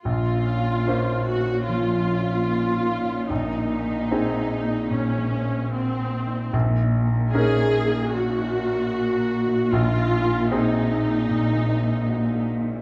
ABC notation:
X:1
M:4/4
L:1/8
Q:1/4=75
K:Bbm
V:1 name="Viola section"
F3 G F4 | E4 D2 C2 | z2 A2 G4 | F2 E4- E z |]
V:2 name="Harp"
(3B,, D F (3E F D (3F, D F (3E F D | (3B,, E A (3G A E (3B,, A, A (3G A E | (3B,, E B (3A B E (3B, E B (3A B E | (3B,, E A (3G A E (3B,, A, A (3G A E |]
V:3 name="Grand piano"
B,,,2 [B,Dc]6 | B,,,2 [CEA]6 | B,,,2 [DEB]6 | B,,,2 [CEA]6 |]
V:4 name="Cello section" clef=bass
B,,8- | B,,8 | B,,8- | B,,8 |]